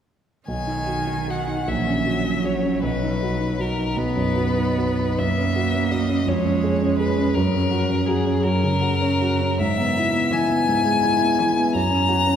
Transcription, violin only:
0.48 1.32 G#5 medium
1.30 1.70 F#5 soft
1.68 2.47 E5 soft
2.45 2.83 C#5 soft
2.83 3.62 B4 soft
3.60 3.99 A#4 soft
3.97 5.20 B4 medium
5.19 5.93 E5 medium
5.92 6.29 D#5 soft
6.28 6.97 C#5 medium
6.98 7.36 B4 soft
7.34 8.07 A#4 medium
8.06 8.44 G#4 medium
8.43 9.59 A#4 medium
9.61 10.34 E5 medium
10.33 11.74 G#5 medium
11.75 12.36 A#5 medium

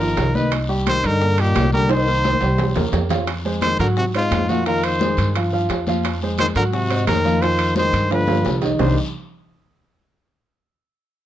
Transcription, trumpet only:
0.00 0.37 A#4 medium
0.35 0.52 B4 medium
0.88 1.08 C5 loud
1.06 1.42 A#4 loud
1.41 1.73 G4 loud
1.73 1.89 A#4 medium
1.91 2.90 C5 loud
3.62 3.78 C5 loud
3.80 3.87 A#4 medium
3.98 4.05 F#4 medium
4.16 4.51 F4 medium
4.49 4.66 F#4 medium
4.66 4.86 A#4 medium
4.84 5.35 C5 medium
6.40 6.47 C5 loud
6.56 6.63 A#4 medium
6.74 7.05 F#4 medium
7.08 7.43 A#4 medium
7.42 7.76 C5 loud
7.77 8.09 C5 medium
8.13 8.60 B4 medium
8.80 8.96 C5 medium

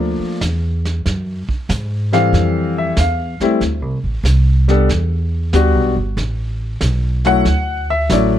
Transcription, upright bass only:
0.00 0.17 D2 medium
0.20 muted upright bass stroke soft
0.41 1.03 E2 medium
1.06 1.46 F#2 medium
1.48 muted upright bass stroke soft
1.69 2.31 G#2 medium
2.33 2.95 F2 medium
2.97 3.38 E2 medium
3.40 muted upright bass stroke soft
3.61 3.82 D2 medium
3.82 4.03 C2 medium
4.04 4.23 A1 medium
4.24 4.87 C2 medium
4.89 5.52 E2 medium
5.53 5.75 D2 medium
5.75 5.96 B1 medium
5.96 6.16 G1 medium
6.17 6.80 A1 medium
6.81 7.44 B1 medium
7.45 8.08 D2 medium
8.10 8.39 A1 medium

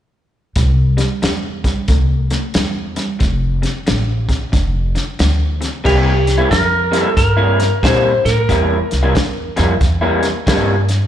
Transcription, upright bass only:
0.56 0.98 C2 medium
1.23 1.65 E2 medium
1.89 2.31 C2 medium
2.55 2.97 E2 medium
3.21 3.63 F1 medium
3.89 4.31 A1 medium
4.53 4.95 F1 medium
5.20 5.62 D2 medium
5.85 6.38 C2 medium
6.51 7.04 F2 medium
7.17 7.69 G2 medium
7.83 8.16 A#2 medium
8.25 8.44 A2 medium
8.49 8.82 E2 medium
8.93 9.11 C2 medium
9.15 9.48 E2 medium
9.59 9.77 F2 medium
9.81 10.33 E2 medium
10.47 10.99 G2 medium

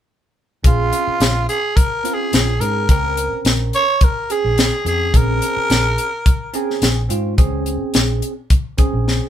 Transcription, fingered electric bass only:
0.64 0.90 A#1 medium
1.07 muted fingered electric bass stroke soft
1.20 1.46 A#1 medium
2.33 2.59 A#1 medium
2.61 2.86 G#2 medium
2.89 3.28 C#2 medium
3.32 muted fingered electric bass stroke soft
3.45 3.71 A#1 medium
4.45 4.70 A#1 medium
4.85 5.11 F2 medium
5.14 5.39 A#1 medium
5.57 muted fingered electric bass stroke soft
5.70 5.96 A#1 medium
6.82 7.08 A#1 medium
7.10 7.36 G#2 medium
7.38 7.78 C#2 medium
7.82 muted fingered electric bass stroke soft
7.95 8.20 A#1 medium
8.93 9.19 A#1 medium

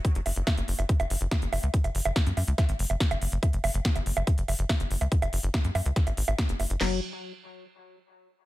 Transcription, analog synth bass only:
0.15 0.22 F#1 medium
0.26 0.32 F#1 loud
0.36 0.43 F#1 medium
0.57 0.64 F#1 medium
0.68 0.74 F#1 loud
0.79 0.85 F#1 medium
1.00 1.06 F#1 medium
1.10 1.17 F#1 loud
1.21 1.27 F#1 medium
1.42 1.48 F#1 medium
1.53 1.59 F#1 loud
1.63 1.69 C#2 medium
1.84 1.91 F#1 medium
1.95 2.01 F#1 loud
2.05 2.12 F#1 medium
2.26 2.33 F#2 medium
2.37 2.43 F#2 loud
2.48 2.54 C#2 medium
2.69 2.75 G#1 medium
2.79 2.86 F#1 loud
2.90 2.96 F#1 medium
3.11 3.17 F#1 medium
3.22 3.28 F#1 loud
3.32 3.38 F#1 loud
3.53 3.60 F#1 medium
3.64 3.70 F#1 loud
3.74 3.81 F#1 medium
3.96 4.02 F#1 medium
4.06 4.12 F#1 loud
4.17 4.23 F#1 medium
4.38 4.44 F#1 medium
4.48 4.55 F#1 loud
4.59 4.65 F#1 medium
4.80 4.86 F#1 medium
4.91 4.97 F#1 loud
5.01 5.07 C#2 medium
5.22 5.29 F#1 medium
5.33 5.39 F#1 loud
5.43 5.50 F#1 medium
5.64 5.71 F#2 medium
5.75 5.81 F#2 loud
5.86 5.92 C#2 medium
6.07 6.13 G#1 medium
6.17 6.24 G#1 loud
6.28 6.34 G#1 medium
6.49 6.55 F#1 medium
6.60 6.66 F#1 loud
6.70 6.76 F#1 medium
6.81 7.00 F#1 loud

